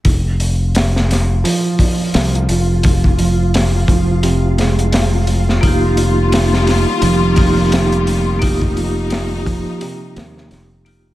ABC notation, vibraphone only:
X:1
M:4/4
L:1/8
Q:"Swing 16ths" 1/4=86
K:Eb
V:1 name="Vibraphone"
z8 | z8 | [B,EFG]4- [B,EFG] [B,EFG]3 | [B,EFG]4- [B,EFG] z2 [B,EFG] |]